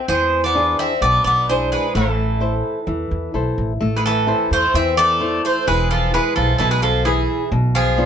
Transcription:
0.08 E2 E3 G#3 C5
0.44 B3 D5
0.55 D4 E4 G#4
0.79 C4 E5
1.01 B1 B2 B3 D5
1.24 B1 B3 D5
1.49 G#3 D4 E4 G#4 C5
1.72 G#3 B4
1.95 A1 E3 A3 A4
2.40 E4 A4 C5
2.87 E2 E3
3.11 E2
3.34 B1 E4 A4 C5
3.58 A1
3.80 A1 A3
3.96 G#3 B4
4.06 E3 A4
4.27 E4 A4 C5
4.51 E2 A3 C5
4.74 E2 E3 C4 E5
4.97 A3 D5
5.20 E4 A4 C5
5.45 A3 C5
5.67 E1 E3 G#3 B4
5.90 F3 A4
6.14 G#3 E4 G#4 B4
6.36 B1 F3 A4
6.58 B1 B2 E3 A4
6.71 G#3 B4
6.82 F3 A4
7.05 E3 E4 G#4 B4
7.52 B1 B2
7.75 F3 G#4
7.98 B3 D4 F4

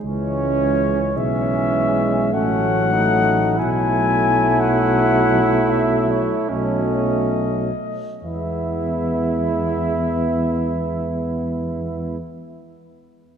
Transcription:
0.04 C#2 E3 G#3 C#4 C#5
1.14 B1 E3 G#3 C#4 E5
2.32 A1 F#3 A3 C#4 F#5
2.93 D#4
3.56 F#3 A3 E4 G#5
3.60 B1
4.60 F#5
5.70 E5
6.11 C#5
6.49 B1 F#3 A3 C#4 D#5
8.23 E2 G#3 B3 E4 E5

